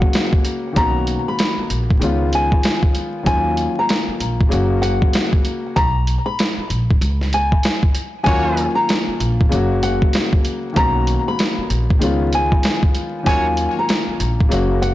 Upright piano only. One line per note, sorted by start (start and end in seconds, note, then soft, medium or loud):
0.00 0.73 C#3 medium
0.00 0.73 F#3 medium
0.00 0.72 A#3 medium
0.00 0.74 C#4 medium
0.00 0.75 F#4 medium
0.72 1.97 D#3 medium
0.72 1.97 A#3 medium
0.72 1.98 B3 medium
0.72 1.99 C#4 medium
0.77 1.99 F#4 medium
1.99 3.22 D#3 medium
1.99 3.23 G#3 medium
1.99 3.24 B3 medium
1.99 3.25 C#4 medium
2.04 3.25 F4 medium
3.23 4.47 D#3 medium
3.23 4.48 F#3 medium
3.23 4.48 A#3 medium
3.23 4.49 C#4 medium
3.28 4.50 F4 medium
4.49 5.73 C#3 medium
4.49 5.73 F#3 medium
4.49 5.74 A#3 medium
4.49 5.74 C#4 medium
4.54 5.75 F#4 medium
8.23 9.47 D#3 medium
8.23 9.48 F#3 medium
8.23 9.48 A#3 medium
8.23 9.49 C#4 medium
8.28 9.50 F4 medium
9.49 10.73 C#3 medium
9.49 10.73 F#3 medium
9.49 10.72 A#3 medium
9.49 10.74 C#4 medium
9.54 10.75 F#4 medium
10.73 11.97 D#3 medium
10.73 11.98 A#3 medium
10.73 11.98 B3 medium
10.73 11.99 C#4 medium
10.77 11.99 F#4 medium
11.99 13.21 D#3 medium
11.99 13.23 G#3 medium
11.99 13.24 B3 medium
11.99 13.24 C#4 medium
12.04 13.25 F4 medium
13.23 14.47 D#3 medium
13.23 14.48 F#3 medium
13.23 14.48 A#3 medium
13.23 14.49 C#4 medium
13.28 14.50 F4 medium
14.49 14.94 C#3 medium
14.49 14.94 F#3 medium
14.49 14.94 A#3 medium
14.49 14.94 C#4 medium
14.53 14.94 F#4 medium